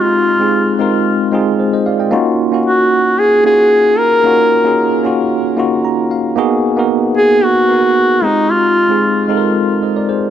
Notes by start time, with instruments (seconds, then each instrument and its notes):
Already playing: tine electric piano G#3 C4 D#4 F4 G4
0.01 duduk F4
0.39 tine electric piano G#3 C4 D#4 F4 G#4
0.79 tine electric piano G#3 C4 D#4 F4 A#4
1.32 tine electric piano G#3 C4 D#4 F4 G#4
1.59 tine electric piano G#4 C5
1.73 tine electric piano C5 D#5
1.86 tine electric piano D5 F5
2.00 tine electric piano D#5 G5
2.11 tine electric piano A#3 C#4 D#4 F4 F#4
2.52 tine electric piano A#3 C#4 D#4 F#4 F5
2.66 duduk F#4
3.19 duduk G#4
3.44 tine electric piano A#3 C#4 D#4 F4 F#4, duduk G#4
3.99 duduk A#4
4.24 tine electric piano A#3 C#4 D#4 F4 F#4
4.64 tine electric piano A#3 C#4 D#4 F4 G#4
5.04 tine electric piano A#3 C#4 D#4 F4 F#4
5.57 tine electric piano A#3 C#4 D#4 F4 F#4
5.85 tine electric piano A#5
6.11 tine electric piano F5
6.36 tine electric piano A#3 B3 D#4 F#4 G#4
6.77 tine electric piano A#3 B3 D#4 F#4 A#4
7.17 duduk G#4
7.44 duduk F#4
7.69 tine electric piano B3 D#4 F#4 A#4
7.78 tine electric piano B4
8.22 tine electric piano G#3 C4 D#4 F4 G4, duduk D#4
8.50 duduk F4
8.89 tine electric piano G#3 C4 D#4 F4 G#4
9.28 tine electric piano G#3 C4 D#4 F4 A4
9.37 tine electric piano A#4
9.83 tine electric piano C5 D#5
9.96 tine electric piano A#4 D5
10.09 tine electric piano G#4 C5